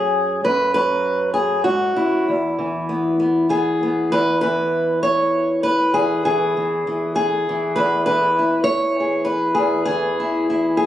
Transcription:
Already playing: F#2 F#3 C#4 G#4
0.45 F#2 B4
0.74 F#3 B4
1.34 G#4
1.64 G#2 F#4
1.96 F#2 E4
2.28 E2
2.59 E3
2.89 B3
3.20 B3
3.49 B3 G#4
3.83 B3
4.12 E2 B4
4.41 E3 B4
5.03 C#5
5.63 B4
5.94 E2 G#4
6.25 E3 G#4
6.57 E3
6.87 E3
7.16 G#4
7.49 E3
7.76 E2 B4
8.06 E3 B4
8.39 E4
8.64 C#5
9.00 G#4
9.25 B4
9.55 E2 G#4
9.85 E3 G#4
10.20 E4
10.50 E4
10.77 G#4

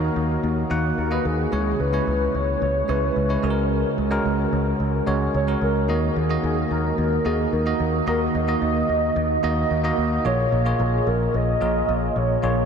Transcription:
Already playing: D#3 A#3 D#4 F#4 A#4 C#5 D#5
0.16 D#2
0.43 D#2
0.70 D#2 A#3 D#4 F#4 F#5
0.98 D#2 A#4
1.11 A#3 D#4 F#4 B4 D#5
1.25 D#2 G#4
1.52 C#2 C#3 G#3 C#4 E4 C#5
1.80 C#2 B4
1.93 G#3 C#4 E4 C#5
2.07 C#2
2.34 C#2 C#5
2.62 C#2 C#5
2.88 C#2 G#3 C#4 E4 B4 C#5
3.16 C#2
3.29 G#3 C#4 E4 C#5
3.43 C#2 C#3 G#3 C#4 F#4 G#4 A#4
3.50 A#4
3.98 C#2
4.11 G#3 C#4 F#4 A#4
4.25 C#2
4.53 C#2
4.80 C#2
5.06 C#2 G#3 C#4 F#4 C#5
5.34 C#2 C#5
5.47 G#3 C#4 F#4 A#4 C#5
5.61 C#2 A#4
5.88 D#2 D#3 A#3 D#4 F#4 D#5
6.16 D#2 G#4
6.29 A#3 D#4 F#4 D#5
6.44 D#2 G#4
6.71 D#2 A#4
6.98 D#2 A#4
7.25 D#2 A#3 D#4 F#4 G#4 D#5
7.53 D#2 A#4
7.66 A#3 D#4 F#4 D#5
7.80 D#2
8.06 D#2 D#3 A#3 D#4 F#4 A#4 D#5
8.35 D#2 D#5
8.47 A#3 D#4 F#4 D#5
8.62 D#2
8.89 D#2
9.16 D#2
9.43 D#2 A#3 D#4 F#4 D#5
9.71 D#2
9.84 A#3 D#4 F#4 D#5
9.98 D#2
10.25 A#1 A#2 A#3 F4 G#4 C#5
10.52 A#1
10.65 A#3 F4 G#4 C#5
10.79 A#1 G#4
11.07 A#1 A#4
11.34 A#1 D#5
11.61 A#1 A#3 F4 G#4 A#4
11.88 A#1
12.16 A#1 C#5
12.43 A#1 A#2 A#3 F4 G#4 C#5

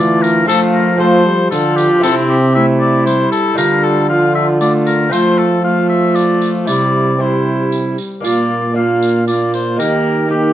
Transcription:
Already playing: D3 E3 A3 D4 F4 A4 D5 F5
0.22 A#4, tambourine
0.45 F3 A3 C4 F4 A4
0.49 F4, tambourine
0.74 A#4
0.97 A3 C4 F4 A4 C5
1.26 G3
1.51 D3 F3 F4 A4, tambourine
1.76 G4, tambourine
1.99 C3 C4 E4 G4 A4
2.03 C4, tambourine
2.29 G4
2.55 A3 E4 E5
2.80 D5
3.06 G3 C5, tambourine
3.32 A4, tambourine
3.54 D3 G3 A3 D4 F4, tambourine
3.58 D3 F4 A#4
3.84 A4
4.09 F3 F4 F5
4.35 E5
4.60 A3 F4 D5, tambourine
4.87 A#4, tambourine
5.09 F3 A3 C4 F4 C5
5.13 tambourine
5.38 A4
5.63 A3 F4 F5
5.89 E5
6.16 D5, tambourine
6.42 tambourine
6.65 C3 G3 C4 E4 D5, tambourine
7.18 G3 C4 E4 C5
7.72 tambourine
7.98 tambourine
8.20 A#2 A#3 D4 F4, tambourine
8.24 A#2 D5
8.73 A#3 D4 F4 F5
9.02 tambourine
9.28 A#3 F4 D5, tambourine
9.54 C5, tambourine
9.76 D#3 A#3 D#4 G4 A#4
9.80 D#3 A#3, tambourine
10.27 A#3 D#4 G4
10.32 A#3

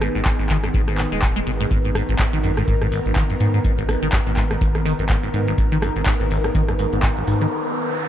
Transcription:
Already playing: D#3 B3 G#4
0.01 G#2, cross-stick, open hi-hat
0.15 G#1 G#2, closed hi-hat
0.25 G#1, kick, clap, closed hi-hat
0.39 G#1, closed hi-hat
0.49 D#3, kick, clap, open hi-hat
0.64 F#2, cross-stick, closed hi-hat
0.74 G#1 G#2, kick, closed hi-hat
0.88 G#2, cross-stick, closed hi-hat
0.98 A#2, clap, open hi-hat
1.12 D#1 G#3, closed hi-hat
1.22 B2, kick, clap, closed hi-hat
1.36 G#3, closed hi-hat
1.47 G#1 B2, open hi-hat
1.60 G#2, closed hi-hat
1.71 G#1 G#2 A#4, kick, closed hi-hat
1.85 G#2, closed hi-hat
1.95 G#2, cross-stick, open hi-hat
2.09 G#1, closed hi-hat
2.19 G#1, kick, clap, closed hi-hat
2.33 G#1 D#3, closed hi-hat
2.43 F#2, open hi-hat
2.57 G#2, cross-stick, closed hi-hat
2.68 G#1 G#2, kick, closed hi-hat
2.81 G#2, cross-stick, closed hi-hat
2.92 G#1, open hi-hat
3.06 G#1, closed hi-hat
3.16 D#3, kick, clap, closed hi-hat
3.30 F#2, closed hi-hat
3.40 G#2, open hi-hat
3.54 G#2, closed hi-hat
3.64 G#1 G#2, kick, closed hi-hat
3.78 G#1, closed hi-hat
3.89 G#1, cross-stick, open hi-hat
4.02 G#1 D#3, closed hi-hat
4.12 F#2, kick, clap, closed hi-hat
4.26 G#1 G#2, closed hi-hat
4.37 G#2, kick, clap, open hi-hat
4.51 G#2, cross-stick, closed hi-hat
4.61 G#1, kick, closed hi-hat
4.75 G#1, cross-stick, closed hi-hat
4.85 D#3, open hi-hat
4.99 G#1 F#2, closed hi-hat
5.09 G#2, kick, clap, closed hi-hat
5.23 G#2, closed hi-hat
5.34 G#2, open hi-hat
5.47 G#1, closed hi-hat
5.58 G#1, kick, closed hi-hat, riser
5.72 D#3, closed hi-hat
5.82 F#2, cross-stick, open hi-hat
5.96 G#1 G#2, closed hi-hat
6.06 G#2, kick, clap, closed hi-hat
6.20 G#1 G#2, closed hi-hat
6.31 G#1, open hi-hat
6.44 G#1, cross-stick, closed hi-hat
6.55 G#1 D#3, kick, closed hi-hat
6.68 F#2, cross-stick, closed hi-hat
6.79 G#2, open hi-hat
6.93 G#1 G#2, closed hi-hat
7.03 G#2, kick, clap, closed hi-hat
7.17 G#1, closed hi-hat
7.27 G#1 G#2, open hi-hat
7.41 D#3, closed hi-hat

